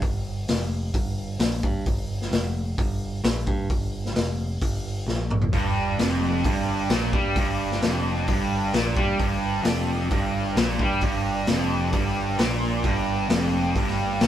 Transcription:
0.02 G1, kick, open hi-hat
0.48 F1, snare, open hi-hat
0.94 G1, kick, open hi-hat
1.39 A#1, snare, open hi-hat
1.63 G2, kick
1.86 G1, kick, open hi-hat
2.21 snare
2.32 F1, snare, open hi-hat
2.78 G1, kick, open hi-hat
3.24 A#1, snare, open hi-hat
3.47 G2, kick
3.70 G1, kick, open hi-hat
4.05 snare
4.14 F1, snare, open hi-hat
4.61 G1, kick, open hi-hat
5.06 A#1, snare
5.30 mid tom
5.42 floor tom
5.53 G1 G2 G3 D4 B4, kick, open hi-hat
5.99 F1 F2, snare, open hi-hat
6.44 G1 G2, kick, open hi-hat
6.90 A#1 A#2, snare, open hi-hat
7.13 G2 G3, kick
7.36 G1 G2, kick, open hi-hat
7.71 snare
7.82 F1 F2, snare, open hi-hat
8.28 G1 G2, kick, open hi-hat
8.74 A#1 A#2, snare, open hi-hat
8.96 G2 G3, kick
9.17 G1 G2 G3 D4 B4, kick, open hi-hat
9.63 F1 F2, snare, open hi-hat
10.10 G1 G2, kick, open hi-hat
10.56 A#1 A#2, snare, open hi-hat
10.79 G2 G3, kick
11.01 G1 G2, kick, open hi-hat
11.47 F1 F2, snare, open hi-hat
11.92 G1 G2, kick, open hi-hat
12.37 A#1 A#2, snare, open hi-hat
12.80 G2 G3 B3 D4
12.84 G1, kick, open hi-hat
13.29 F1 F2, snare, open hi-hat
13.75 G1 G2, kick, open hi-hat
13.88 snare
14.21 A#1 A#2, snare, open hi-hat

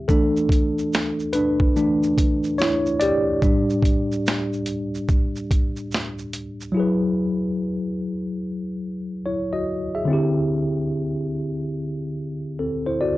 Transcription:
Already playing: G4
0.08 E3 A3 D4 A4, kick, shaker
0.37 shaker
0.49 kick, closed hi-hat, shaker
0.78 shaker
0.93 snare, shaker
1.20 shaker
1.33 D4 B4, closed hi-hat, shaker
1.60 kick
1.76 E3 A3 D4, shaker
2.03 shaker
2.18 kick, closed hi-hat, shaker
2.44 shaker
2.58 E4 C#5, snare, shaker
2.86 shaker
3.00 G4 D5, closed hi-hat, shaker
3.42 A2 G3 D4, kick, shaker
3.70 shaker
3.83 kick, closed hi-hat, shaker
4.12 shaker
4.26 snare, shaker
4.53 shaker
4.66 closed hi-hat, shaker
4.95 shaker
5.09 kick, shaker
5.36 shaker
5.51 kick, closed hi-hat, shaker
5.76 shaker
5.91 snare, shaker
6.19 shaker
6.33 closed hi-hat, shaker
6.61 shaker
6.72 F#3 E4
6.77 G#4 B4
9.26 E4 C#5
9.53 F#4 D#5
9.95 G#4 E5
10.05 D3 C4
10.10 E4 G4
12.59 C4 A4
12.86 E4 C5
13.01 F#4 D5

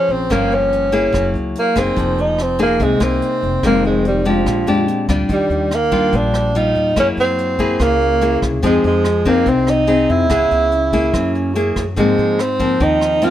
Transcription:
Already playing: F3 C#4 G#4 C5
0.09 A#1 C4, closed hi-hat
0.30 G1 G2 F3 A#3 C#4, kick, cross-stick, closed hi-hat
0.51 C#4, closed hi-hat
0.72 closed hi-hat
0.92 A#3 E4 G#4, closed hi-hat
1.12 F#1 F#3, kick, cross-stick, closed hi-hat
1.34 C#2, closed hi-hat
1.55 A#3, closed hi-hat
1.76 F#1 A#3 C4 D#4 G#4, kick, cross-stick, closed hi-hat
1.96 F1 F3, kick, closed hi-hat
2.18 D#4, closed hi-hat
2.38 C4, cross-stick, closed hi-hat
2.59 A#3 D#4 G#4, closed hi-hat
2.80 C2 C3 G#3, kick, closed hi-hat
3.00 C2 A#3 C4 D#4 G#4, cross-stick, closed hi-hat
3.22 closed hi-hat
3.43 F1, closed hi-hat
3.63 F1 F2 D#3 G#3 A#3 C4, kick, cross-stick, closed hi-hat
3.84 G#3, closed hi-hat
4.05 G3, closed hi-hat
4.25 F3 G#3 D4 G4, closed hi-hat
4.46 A#1 A#2, kick, cross-stick, closed hi-hat
4.67 F2 G#3 D4 F4 G4, closed hi-hat
4.87 C4, closed hi-hat
5.09 D2 G3 D4 F4, kick, cross-stick, closed hi-hat
5.29 D#2 D#3 G3, kick, closed hi-hat
5.50 D#2, closed hi-hat
5.71 A#3, cross-stick, closed hi-hat
5.92 G3 D4 F4, kick, closed hi-hat
6.13 A#1 A#2 D4, kick, closed hi-hat
6.34 cross-stick, closed hi-hat
6.55 G3 D#4 F4, closed hi-hat
6.75 D#2, closed hi-hat
6.96 F#2 F#3 A#3 C#4 E4 G#4, kick, cross-stick, closed hi-hat
7.17 F#2 C4, closed hi-hat
7.38 closed hi-hat
7.59 A#3 E4 G#4, kick, closed hi-hat
7.79 C#2 C#3 A#3, kick, cross-stick, closed hi-hat
8.01 closed hi-hat
8.21 A#3 E4 G#4, closed hi-hat
8.42 C2, kick, cross-stick, closed hi-hat
8.63 F2 F3 G#3 C4 D#4 G#4, kick, closed hi-hat
8.84 F2 G#3, closed hi-hat
9.05 cross-stick, closed hi-hat
9.25 A#3 C4 D#4 G#4, kick, closed hi-hat
9.46 C2 C3 C4, kick, closed hi-hat
9.67 D#4, cross-stick, closed hi-hat
9.87 C4 D#4 G#4, closed hi-hat
10.09 F2 E4, closed hi-hat
10.30 C#2 C#3 B3 E4 G#4, kick, cross-stick, closed hi-hat
10.50 C#2 B3, closed hi-hat
10.72 C#4, closed hi-hat
10.93 A#3 E4 G#4, kick, closed hi-hat
11.13 F#2 F#3 C#4, kick, cross-stick, closed hi-hat
11.35 closed hi-hat
11.54 A#3 E4 G#4, closed hi-hat
11.76 F#2, kick, cross-stick, closed hi-hat
11.96 G#2 F3 G#3 A#3 C4, kick, closed hi-hat
12.18 G#2, closed hi-hat
12.39 C4, cross-stick, closed hi-hat
12.60 F3 A#3 C4, kick, closed hi-hat
12.80 D#2 D#3 D#4, kick, closed hi-hat
13.01 cross-stick, closed hi-hat
13.22 F3 A#3 C4 F4, closed hi-hat

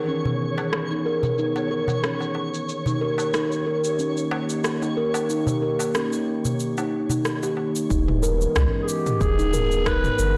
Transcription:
Already playing: D#3 E3 B3 G#4 C#5
0.07 C#4, cabasa
0.25 darbuka dum, cabasa
0.58 darbuka ka, darbuka tek, cabasa
0.73 cross-stick, cabasa
0.91 D#4, cabasa
1.06 A#4
1.23 darbuka dum, cabasa
1.38 D#4, cabasa
1.56 darbuka tek, cabasa
1.71 A#4
1.88 darbuka ka, darbuka dum, cabasa
2.04 C#4, cross-stick, cabasa
2.20 darbuka ka, cabasa
2.35 darbuka ka
2.54 cabasa
2.68 D#3 A#3 D#4 G4, cabasa
2.86 D#4, darbuka dum, cabasa
3.01 A#4
3.18 darbuka ka, darbuka tek, cabasa
3.34 D#4, cross-stick, cabasa
3.52 cabasa
3.66 A#4
3.84 cabasa
3.99 C#4, cabasa
4.17 cabasa
4.31 darbuka ka, darbuka tek
4.50 cabasa
4.64 cross-stick, darbuka ka, cabasa
4.82 D#4, darbuka ka, cabasa
4.97 A#4
5.14 darbuka tek, cabasa
5.29 D#4, cabasa
5.47 darbuka dum, cabasa
5.62 A#4
5.79 darbuka ka, darbuka tek, cabasa
5.95 C#4, cross-stick, cabasa
6.13 cabasa
6.45 darbuka dum, cabasa
6.60 cabasa
6.78 D#4, darbuka tek, cabasa
7.09 D#4, darbuka ka, darbuka dum, cabasa
7.25 cross-stick, cabasa
7.43 G4, darbuka ka, cabasa
7.57 darbuka ka
7.76 cabasa
7.90 D#1 E3 G#3 B3 D#4, kick, cabasa
8.08 mid tom
8.23 A#4, cabasa
8.41 cabasa
8.56 C#2 C#4, kick, cross-stick, mid tom, cabasa
8.82 G#4
8.88 G4, cabasa
9.06 mid tom, cabasa
9.21 D#1 G#4, kick, cabasa
9.39 D#4, cabasa
9.54 A#4, mid tom, cabasa
9.71 cabasa
9.86 D#4 B4, kick, cross-stick, cabasa
10.04 mid tom, cabasa
10.19 G1 A#4, cabasa

